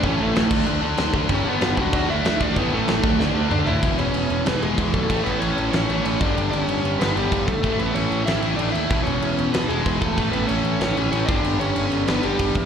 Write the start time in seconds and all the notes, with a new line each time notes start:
0.01 A1 A2 E3 A3 C#4 C#5, kick, crash
0.17 A1 A2 E3 A3
0.21 A3 A4
0.33 A1 A2 E3 A3, snare, crash
0.49 D2 D3 A3 D4, kick, crash
0.65 D2 D3 A3 D4, crash
0.82 D2 D3 A3 D4
0.98 D2 D3 A3 D4, snare, crash
1.14 D2 D3 A3 D4, kick
1.28 G1 G2 D3 G3, kick, crash
1.32 C#4 C#5
1.45 G1 G2 D3 G3 B3
1.49 B4
1.60 G1 G2 D3 G3, snare, crash
1.77 C#2 G2 D3 G3 F#4, kick
1.81 F#5
1.93 D2 D3 A3 D4, kick, crash
2.09 D2 D3 A3 D4 E4 E5
2.25 D2 D3 A3 D4, snare, crash
2.40 D2 D3 A3 D4 D5, kick
2.56 A1 A2 E3 A3 B3 B4, kick, crash
2.72 A1 A2 E3 A3 A4
2.87 A1 A2 E3 A3, snare, crash
3.02 D2 D3 A3 D4, kick
3.19 D2 D3 A3 D4, snare
3.34 D2 D3 A3 D4
3.49 D2 D3 A3 D4 D5, mid tom
3.65 D2 D3 A3 D4 E4 E5, floor tom
3.82 E1 E2 B2, kick, crash
3.86 E3
3.98 E1 C#4 C#5, crash
4.14 E1, crash
4.30 E1, crash
4.44 E1 E2 B2 E3 B4, snare, crash
4.49 B3
4.61 E1 E2 B2 E3 G#3 G#4, crash
4.78 E1 E2 B2 E3, kick, crash
4.93 B1 A3 A4, kick, crash
5.09 A1 A2 E3 A3, kick, crash
5.24 A1 B3 B4, crash
5.40 A1 C#4 C#5, crash
5.58 A1, crash
5.71 A1 A2 E3 A3 C#4 C#5, snare, crash
5.89 A1 E3 A3, crash
5.93 A2
6.04 A1 A2 E3 A3 C#4 C#5, crash
6.20 G1 G2 D3 D4 D5, kick, crash
6.25 G3
6.37 G1, crash
6.51 G1 C#4 D5, crash
6.62 C#5
6.68 G1, crash
6.83 G1 G2 D3 G3, crash
7.00 G1 G2 D3 G3 B3 B4, snare, crash
7.16 G1 G2 D3 G3 G4, crash
7.32 G1, kick, crash
7.47 G1 A3 A4, kick, crash
7.63 A1 A2 E3, kick, crash
7.67 A3
7.79 A1 B3 B4, crash
7.95 A1 C#4 C#5, crash
8.11 A1, crash
8.25 A1 A2 E3 E5, snare, crash
8.29 A3 E4
8.42 A1 E3 A3, crash
8.46 A2
8.56 A1 A2 D4 D5, crash
8.61 E3 A3
8.72 D#2 E4 E5, crash
8.89 E1 E2 B2, kick, crash
8.93 E3
9.03 E1 C#4 C#5, crash
9.21 E1, crash
9.38 E1, crash
9.52 E1 E2 B2 B3 B4, snare, crash
9.58 E3
9.68 E1 E2 B2 E3 G#3 G#4, crash
9.85 E1 E2 B2 E3, kick, crash
10.01 E1 A4, kick, crash
10.05 A3
10.16 A1 A2 E3 A3, kick, crash
10.31 A1 B3 B4, crash
10.48 A1 C#4 C#5, crash
10.65 A1, crash
10.80 A1 A2 E3 A3 C#4 C#5, snare, crash
10.97 A1 A2 E3 A3, crash
11.12 A1 A2 E3 C#4 C#5, crash
11.16 A3
11.26 G1 G2 D4 D5, kick, crash
11.30 D3 G3
11.44 G1, crash
11.60 G1 C#4 C#5, crash
11.76 G1, crash
11.91 G1 D3 G3, crash
11.96 G2
12.07 G1 G2 D3 B3 B4, snare, crash
12.12 G3
12.23 G1 G2 D3 G3 G4, crash
12.39 G1, kick, crash
12.55 E2, kick, crash